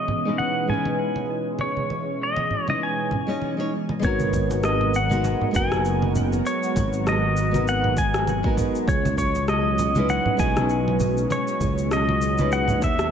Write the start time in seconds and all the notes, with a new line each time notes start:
Already playing: B2 E3 G#3 C#4 D#5
0.08 muted conga, low conga
0.25 G#3 C#4 D#4 E4 B4
0.38 F#5, muted conga
0.67 G#3 C#4 D#4 G#5, low conga
0.72 E4 B4
0.85 muted conga
1.16 muted conga
1.59 C#5, muted conga
1.77 high conga
1.90 muted conga
2.23 D#5
2.36 muted conga
2.50 low conga
2.67 G#3 C#4 D#4 E4 B4 D#5, muted conga, high conga
2.83 G#5
3.11 muted conga, low conga
3.27 G#3 C#4 D#4 C#5
3.42 muted conga
3.57 G#3 C#4 D#4 C#5
3.89 muted conga
3.99 G#1 G#3 B3 D#4, kick, muted conga, shaker
4.04 F#3 G#3 B3 F#4 A#4 C#5
4.20 high conga, shaker
4.33 kick, low conga, shaker
4.51 muted conga, shaker
4.64 D#5, cross-stick, shaker
4.81 muted conga
4.94 F#5, shaker
5.09 G#3 B3 D#4 F#4 A#4, high conga, shaker
5.24 muted conga, shaker
5.41 low conga
5.51 F#1 G#3 B3 D#4, kick, shaker
5.56 F#4 A#4 G#5, muted conga
5.72 cross-stick, high conga, shaker
5.85 shaker
6.02 muted conga
6.15 high conga, low conga, shaker
6.33 muted conga, shaker
6.46 C#5, shaker
6.63 shaker
6.76 G#1, kick, muted conga, low conga, shaker
6.93 shaker
7.07 D#5, cross-stick, muted conga, shaker
7.37 shaker
7.51 G#3 B3 D#4 F#4 A#4, muted conga, high conga, shaker
7.68 F#5, shaker
7.84 muted conga, low conga
7.97 G#5, kick, shaker
8.14 cross-stick, shaker
8.27 muted conga, shaker
8.43 G#3 B3 D#4 F#4 A#4, kick
8.57 kick, muted conga, low conga, shaker
8.75 shaker
8.87 C#2 B2 C#4 C#5, kick, shaker
9.05 muted conga, high conga, shaker
9.17 C#5, kick, low conga, shaker
9.35 muted conga, shaker
9.48 D#5, cross-stick, shaker
9.79 muted conga, shaker
9.95 G#3 C#4 D#4 E4 B4, high conga, shaker
10.09 F#5, muted conga, shaker
10.26 low conga
10.37 B1 G#3 C#4 D#4 G#5, kick, shaker
10.42 E4 B4
10.57 cross-stick, muted conga, high conga, shaker
10.69 shaker
10.88 muted conga
11.00 high conga, low conga, shaker
11.18 shaker
11.30 C#5, muted conga, shaker
11.48 shaker
11.61 C#2, kick, muted conga, low conga, shaker
11.78 shaker
11.91 D#5, cross-stick, shaker
12.09 muted conga
12.22 shaker
12.38 G#3 C#4 D#4 E4 B4, muted conga, high conga, shaker
12.52 F#5, shaker
12.68 low conga, shaker
12.82 D#2 E5, kick, muted conga, shaker
12.99 cross-stick, shaker